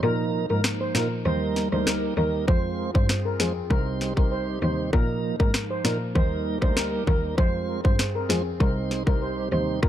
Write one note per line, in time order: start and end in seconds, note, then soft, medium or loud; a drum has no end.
0.00 0.39 A#2 loud
0.00 0.46 F3 medium
0.00 1.25 F3 medium
0.00 0.46 A#3 medium
0.00 1.25 A#3 medium
0.00 2.45 D#4 medium
0.00 0.46 D#4 medium
0.00 0.28 A#4 medium
0.00 0.46 A#4 loud
0.49 0.85 G#2 medium
0.49 0.61 F3 medium
0.49 0.62 A#3 medium
0.49 0.62 D#4 medium
0.49 0.62 A#4 medium
0.64 finger snap medium
0.64 cross-stick medium
0.64 snare loud
0.81 0.92 C5 medium
0.95 1.18 A#2 medium
0.95 1.08 F3 medium
0.95 1.08 A#3 medium
0.95 1.08 D#4 medium
0.95 1.08 A#4 medium
0.95 finger snap medium
0.95 snare loud
1.25 1.62 D#2 loud
1.25 1.68 G3 medium
1.25 2.47 G3 medium
1.25 1.68 A#3 medium
1.25 1.68 D#4 medium
1.25 2.47 G4 medium
1.25 1.69 A#4 loud
1.25 2.47 A#4 medium
1.25 1.39 C5 medium
1.56 snare medium
1.72 1.96 D2 medium
1.72 2.14 G3 medium
1.72 2.14 A#3 medium
1.72 2.14 D#4 medium
1.72 2.14 A#4 medium
1.72 1.84 C5 medium
1.87 2.00 A#4 medium
1.87 finger snap medium
1.87 cross-stick medium
1.87 snare loud
2.17 2.30 D#2 medium
2.17 2.46 G3 medium
2.17 2.46 A#3 medium
2.17 2.46 D#4 medium
2.17 2.30 A#4 medium
2.17 2.46 A#4 medium
2.48 2.84 F2 loud
2.48 2.91 G#3 medium
2.48 2.91 C4 medium
2.48 4.91 C4 medium
2.48 2.91 F4 medium
2.48 3.69 F4 medium
2.48 3.69 G#4 medium
2.48 2.73 C5 loud
2.48 2.91 C5 loud
2.48 kick loud
2.95 3.29 G2 medium
2.95 3.07 G#3 medium
2.95 3.07 C4 medium
2.95 3.07 F4 medium
2.95 3.06 C5 medium
2.95 3.07 C5 medium
2.95 kick loud
3.09 finger snap medium
3.09 cross-stick medium
3.09 snare loud
3.25 3.37 A#4 medium
3.40 3.63 F2 medium
3.40 3.53 G#3 medium
3.40 3.53 C4 medium
3.40 3.53 F4 medium
3.40 3.53 G#4 medium
3.40 3.53 C5 medium
3.40 finger snap medium
3.40 snare loud
3.70 4.06 C2 loud
3.70 4.92 C3 medium
3.70 4.13 G3 medium
3.70 4.13 C4 medium
3.70 4.13 D#4 medium
3.70 7.34 D#4 medium
3.70 4.92 G4 medium
3.70 3.84 A#4 medium
3.70 4.14 C5 loud
3.70 kick medium
4.01 snare medium
4.17 4.52 C2 medium
4.17 4.59 G3 medium
4.17 4.59 C4 medium
4.17 4.59 D#4 medium
4.17 4.29 A#4 medium
4.17 4.59 C5 medium
4.17 kick medium
4.32 4.45 C5 medium
4.62 4.86 D#2 medium
4.62 4.90 G3 medium
4.62 4.91 C4 medium
4.62 4.91 D#4 medium
4.62 4.75 C5 medium
4.62 4.91 C5 medium
4.93 5.29 A#2 loud
4.93 5.36 F3 medium
4.93 6.14 F3 medium
4.93 5.36 A#3 medium
4.93 6.14 A#3 medium
4.93 5.36 D#4 medium
4.93 5.18 A#4 medium
4.93 5.36 A#4 loud
4.93 kick loud
5.39 5.74 G#2 medium
5.39 5.51 F3 medium
5.39 5.51 A#3 medium
5.39 5.52 D#4 medium
5.39 5.51 A#4 medium
5.39 5.52 A#4 medium
5.39 kick medium
5.54 finger snap medium
5.54 cross-stick medium
5.54 snare loud
5.71 5.82 C5 medium
5.84 6.08 A#2 medium
5.84 5.98 F3 medium
5.84 5.98 A#3 medium
5.84 5.98 D#4 medium
5.84 5.98 A#4 medium
5.84 finger snap medium
5.84 snare loud
6.15 6.51 D#2 loud
6.15 6.58 G3 medium
6.15 7.37 G3 medium
6.15 6.58 A#3 medium
6.15 6.58 D#4 medium
6.15 7.37 G4 medium
6.15 7.37 A#4 medium
6.15 6.58 A#4 loud
6.15 6.28 C5 medium
6.15 kick medium
6.62 6.86 D2 medium
6.62 7.04 G3 medium
6.62 7.04 A#3 medium
6.62 7.04 D#4 medium
6.62 7.04 A#4 medium
6.62 6.74 C5 medium
6.62 kick medium
6.77 6.90 A#4 medium
6.77 finger snap medium
6.77 snare loud
7.07 7.20 D#2 medium
7.07 7.35 G3 medium
7.07 7.35 A#3 medium
7.07 7.36 D#4 medium
7.07 7.21 A#4 medium
7.07 7.36 A#4 medium
7.07 kick medium
7.37 7.74 F2 loud
7.37 7.81 G#3 loud
7.37 7.81 C4 medium
7.37 9.80 C4 medium
7.37 7.81 F4 medium
7.37 8.59 F4 medium
7.37 8.59 G#4 medium
7.37 7.63 C5 loud
7.37 7.81 C5 loud
7.37 kick loud
7.84 8.19 G2 medium
7.84 7.96 G#3 medium
7.84 7.96 C4 medium
7.84 7.96 F4 medium
7.84 7.96 C5 medium
7.84 kick medium
7.99 finger snap medium
7.99 cross-stick medium
7.99 snare loud
8.15 8.27 A#4 medium
8.29 8.53 F2 medium
8.29 8.43 G#3 medium
8.29 8.43 C4 medium
8.29 8.43 F4 medium
8.29 8.43 G#4 medium
8.29 8.43 C5 medium
8.29 finger snap medium
8.29 snare loud
8.60 8.96 C2 loud
8.60 9.82 C3 medium
8.60 9.03 G3 medium
8.60 9.03 C4 medium
8.60 9.03 D#4 medium
8.60 9.89 D#4 medium
8.60 9.82 G4 medium
8.60 8.74 A#4 medium
8.60 9.03 C5 loud
8.60 kick medium
8.91 snare medium
9.07 9.42 C2 medium
9.07 9.49 G3 medium
9.07 9.49 C4 medium
9.07 9.49 D#4 medium
9.07 9.19 A#4 medium
9.07 9.49 C5 medium
9.07 kick medium
9.22 9.35 C5 medium
9.51 9.76 D#2 medium
9.51 9.80 G3 medium
9.51 9.80 C4 medium
9.51 9.80 D#4 medium
9.51 9.80 C5 medium
9.51 9.65 C5 medium
9.83 9.89 A#2 loud
9.83 9.89 F3 medium
9.83 9.89 A#3 medium
9.83 9.89 D#4 medium
9.83 9.89 A#4 medium
9.83 9.89 A#4 loud
9.83 kick loud